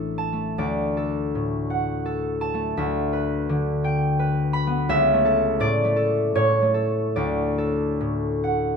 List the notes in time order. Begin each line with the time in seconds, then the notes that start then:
Already playing: A1 A2 E3 A4 C#5 E5 A5
0.18 A5
0.33 A3
0.58 D2 D5
0.97 A4
1.35 A2
1.70 F#5
2.06 A4
2.41 A5
2.54 A3
2.77 D2 E5
3.13 B4
3.49 D3
3.84 G5
4.19 B4
4.53 B5
4.67 B3
4.89 C#2 E5
5.14 A3
5.25 A4
5.60 A2 D5
5.84 A3
5.96 A4
6.35 A2 C#5
6.62 A3
6.74 A4
7.16 D2 D5
7.58 A4
8.01 A2
8.44 F#5